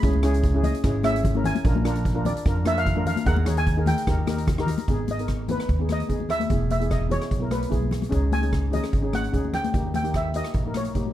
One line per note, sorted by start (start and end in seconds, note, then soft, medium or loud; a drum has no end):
0.02 0.69 C#2 loud
0.02 0.15 C#4 medium
0.02 0.16 E4 medium
0.02 0.17 G#4 medium
0.02 kick loud
0.02 closed hi-hat medium
0.13 high conga medium
0.23 0.42 C#4 medium
0.23 0.42 E4 medium
0.23 0.42 G#4 loud
0.23 cross-stick medium
0.23 closed hi-hat medium
0.34 closed hi-hat medium
0.43 kick medium
0.43 closed hi-hat medium
0.54 0.72 C#4 medium
0.54 0.73 E4 medium
0.54 0.73 G#4 medium
0.63 1.01 D#5 medium
0.63 closed hi-hat medium
0.63 high conga medium
0.63 low conga medium
0.75 closed hi-hat medium
0.84 1.50 G#1 loud
0.84 0.97 C#4 medium
0.84 0.97 E4 medium
0.84 0.97 G#4 medium
0.84 kick loud
0.84 cross-stick medium
0.84 closed hi-hat medium
1.03 1.22 C#4 medium
1.03 1.23 E4 medium
1.03 1.23 G#4 medium
1.03 1.46 E5 loud
1.03 cross-stick medium
1.03 closed hi-hat medium
1.03 high conga medium
1.16 closed hi-hat medium
1.23 kick medium
1.23 closed hi-hat medium
1.23 low conga medium
1.35 1.53 C#4 medium
1.35 1.54 E4 medium
1.35 1.54 A#4 medium
1.35 high conga medium
1.44 1.64 G#5 medium
1.44 closed hi-hat medium
1.44 low conga medium
1.55 closed hi-hat medium
1.55 high conga medium
1.65 2.30 A#1 loud
1.65 1.77 D4 medium
1.65 1.78 F4 medium
1.65 1.78 A#4 medium
1.65 kick loud
1.65 closed hi-hat medium
1.75 high conga medium
1.85 2.03 D4 medium
1.85 2.03 F4 medium
1.85 2.04 A#4 medium
1.85 cross-stick medium
1.85 closed hi-hat medium
1.95 closed hi-hat medium
2.05 kick medium
2.05 closed hi-hat medium
2.15 2.33 D4 medium
2.15 2.33 F4 medium
2.15 2.34 A#4 medium
2.25 2.63 D5 medium
2.25 closed hi-hat medium
2.25 high conga medium
2.25 low conga medium
2.37 closed hi-hat medium
2.45 3.11 F2 loud
2.45 2.58 D4 medium
2.45 2.59 F4 medium
2.45 2.59 A#4 medium
2.45 kick loud
2.45 cross-stick medium
2.45 closed hi-hat medium
2.65 2.84 D4 medium
2.65 2.84 F4 medium
2.65 2.85 A#4 medium
2.65 2.72 E5 loud
2.65 cross-stick medium
2.65 closed hi-hat medium
2.65 high conga medium
2.77 3.06 F5 loud
2.77 closed hi-hat medium
2.85 kick medium
2.85 closed hi-hat medium
2.85 low conga medium
2.96 3.14 D4 medium
2.96 3.14 F4 medium
2.96 3.15 A#4 medium
2.96 high conga medium
3.06 3.27 F5 medium
3.06 closed hi-hat medium
3.06 low conga medium
3.16 closed hi-hat medium
3.16 high conga medium
3.25 3.92 D#2 loud
3.25 3.38 D#4 medium
3.25 3.39 G#4 medium
3.25 3.40 A#4 medium
3.25 3.58 F#5 loud
3.25 kick loud
3.25 closed hi-hat medium
3.37 high conga medium
3.45 3.64 D#4 medium
3.45 3.65 G#4 medium
3.45 3.65 C#5 medium
3.45 cross-stick medium
3.45 closed hi-hat medium
3.45 low conga medium
3.57 3.85 G#5 loud
3.57 closed hi-hat medium
3.67 kick medium
3.67 closed hi-hat medium
3.77 3.95 D#4 medium
3.77 3.96 G#4 medium
3.77 3.96 A#4 medium
3.86 4.64 G5 medium
3.86 closed hi-hat medium
3.86 high conga medium
3.86 low conga medium
3.98 closed hi-hat medium
4.07 4.73 D#2 medium
4.07 4.20 D#4 medium
4.07 4.20 G4 medium
4.07 4.21 A#4 medium
4.07 kick loud
4.07 cross-stick medium
4.07 closed hi-hat medium
4.27 4.45 D#4 medium
4.27 4.46 G4 medium
4.27 4.46 A#4 medium
4.27 cross-stick medium
4.27 closed hi-hat medium
4.27 high conga medium
4.38 closed hi-hat medium
4.47 kick medium
4.47 cross-stick medium
4.47 closed hi-hat medium
4.47 low conga medium
4.58 4.76 D#4 medium
4.58 4.77 G4 medium
4.58 4.77 A#4 loud
4.58 cross-stick medium
4.66 closed hi-hat medium
4.66 low conga medium
4.78 closed hi-hat medium
4.78 high conga medium
4.88 5.54 G#1 medium
4.88 5.06 B3 medium
4.88 5.07 D#4 medium
4.88 5.07 G#4 medium
4.88 kick loud
4.88 closed hi-hat medium
5.08 5.51 D#5 medium
5.08 closed hi-hat medium
5.08 high conga medium
5.19 5.37 B3 medium
5.19 5.37 D#4 medium
5.19 5.38 A#4 medium
5.19 closed hi-hat medium
5.28 kick medium
5.28 cross-stick medium
5.28 closed hi-hat medium
5.48 5.67 B3 medium
5.48 5.67 D#4 medium
5.48 5.67 B4 medium
5.48 5.88 B4 medium
5.48 closed hi-hat medium
5.48 high conga medium
5.48 low conga medium
5.60 cross-stick medium
5.60 closed hi-hat soft
5.69 6.02 D#2 medium
5.69 kick medium
5.69 closed hi-hat medium
5.79 5.97 B3 medium
5.79 5.98 D#4 medium
5.79 5.99 G#4 medium
5.89 6.29 D#5 medium
5.89 cross-stick medium
5.89 closed hi-hat medium
5.89 high conga medium
6.00 closed hi-hat medium
6.08 6.42 D#2 medium
6.08 6.33 B3 medium
6.08 6.34 D#4 medium
6.08 6.34 G#4 medium
6.08 kick medium
6.08 closed hi-hat medium
6.20 high conga medium
6.29 6.70 E5 medium
6.29 cross-stick medium
6.29 closed hi-hat medium
6.29 low conga medium
6.40 closed hi-hat medium
6.40 high conga medium
6.49 7.16 E1 medium
6.49 6.68 B3 medium
6.49 6.68 E4 medium
6.49 6.69 G#4 medium
6.49 kick loud
6.49 closed hi-hat medium
6.70 6.92 E5 medium
6.70 closed hi-hat medium
6.70 high conga medium
6.80 6.98 B3 medium
6.80 6.99 E4 medium
6.80 6.99 G#4 medium
6.80 closed hi-hat medium
6.91 7.12 D#5 medium
6.91 kick medium
6.91 cross-stick medium
6.91 closed hi-hat medium
7.09 7.28 B3 medium
7.09 7.29 E4 medium
7.09 7.29 G#4 medium
7.09 7.53 C#5 medium
7.09 closed hi-hat medium
7.09 high conga medium
7.09 low conga medium
7.22 cross-stick medium
7.22 closed hi-hat medium
7.31 7.64 B1 medium
7.31 kick medium
7.31 closed hi-hat medium
7.40 7.59 B3 medium
7.40 7.59 E4 medium
7.40 7.60 A#4 medium
7.51 7.89 B4 medium
7.51 cross-stick medium
7.51 closed hi-hat medium
7.51 high conga medium
7.63 closed hi-hat medium
7.69 8.05 B1 medium
7.69 7.95 B3 medium
7.69 7.95 E4 medium
7.69 7.96 G#4 medium
7.69 kick medium
7.69 closed hi-hat medium
7.82 high conga medium
7.91 cross-stick medium
7.91 closed hi-hat medium
7.91 low conga medium
8.02 closed hi-hat medium
8.02 high conga medium
8.09 8.78 C#2 medium
8.09 8.29 C#4 medium
8.09 8.29 D#4 medium
8.09 8.30 G#4 medium
8.09 kick loud
8.09 closed hi-hat medium
8.32 8.70 G#5 loud
8.32 closed hi-hat medium
8.32 high conga medium
8.41 8.60 C#4 medium
8.41 8.60 D#4 medium
8.41 8.61 G#4 medium
8.41 closed hi-hat medium
8.53 kick medium
8.53 cross-stick medium
8.53 closed hi-hat medium
8.70 8.90 C#4 medium
8.70 8.90 D#4 medium
8.70 8.91 G#4 medium
8.70 9.15 D#5 medium
8.70 closed hi-hat medium
8.70 high conga medium
8.70 low conga medium
8.84 cross-stick medium
8.84 closed hi-hat soft
8.93 9.26 G#1 medium
8.93 kick loud
8.93 closed hi-hat soft
9.02 9.21 C#4 medium
9.02 9.21 D#4 medium
9.02 9.22 G#4 medium
9.13 9.56 F#5 loud
9.13 cross-stick medium
9.13 closed hi-hat medium
9.13 high conga medium
9.24 closed hi-hat soft
9.32 9.66 D2 medium
9.32 9.57 C#4 medium
9.32 9.57 D#4 medium
9.32 9.58 G#4 medium
9.32 kick medium
9.32 closed hi-hat medium
9.45 high conga medium
9.54 9.94 G5 medium
9.54 cross-stick medium
9.54 closed hi-hat medium
9.54 low conga medium
9.64 closed hi-hat medium
9.64 high conga medium
9.73 10.40 D#2 medium
9.73 9.91 A#3 medium
9.73 9.92 D#4 medium
9.73 9.93 G4 medium
9.73 kick loud
9.73 closed hi-hat medium
9.94 10.16 G5 medium
9.94 closed hi-hat medium
9.94 high conga medium
9.94 low conga medium
10.03 10.22 A#3 medium
10.03 10.22 D#4 medium
10.03 10.23 G4 medium
10.03 closed hi-hat medium
10.14 10.36 E5 medium
10.14 kick medium
10.14 cross-stick medium
10.14 closed hi-hat medium
10.34 10.53 A#3 medium
10.34 10.53 D#4 medium
10.34 10.54 G4 medium
10.34 10.77 D#5 medium
10.34 closed hi-hat medium
10.44 cross-stick medium
10.44 closed hi-hat medium
10.54 10.87 A#1 medium
10.54 kick loud
10.54 closed hi-hat medium
10.66 10.84 A#3 medium
10.66 10.84 D#4 medium
10.66 10.84 A#4 medium
10.74 11.13 C#5 medium
10.74 cross-stick medium
10.74 closed hi-hat medium
10.74 high conga medium
10.85 closed hi-hat medium
10.94 11.13 A#1 medium
10.94 11.13 A#3 medium
10.94 11.13 D#4 medium
10.94 11.13 G4 medium
10.94 kick medium
10.94 closed hi-hat medium
10.94 high conga soft
11.06 high conga medium